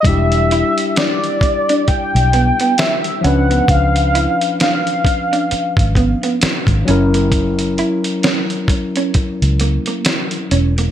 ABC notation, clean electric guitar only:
X:1
M:4/4
L:1/16
Q:"Swing 16ths" 1/4=66
K:Edor
V:1 name="Clean electric guitar"
z2 E z D z2 D z2 B, B, z2 C B, | z2 E z D z2 D z2 B, B, z2 C ^A, | z2 E z C z2 C z2 ^A, A, z2 C A, |]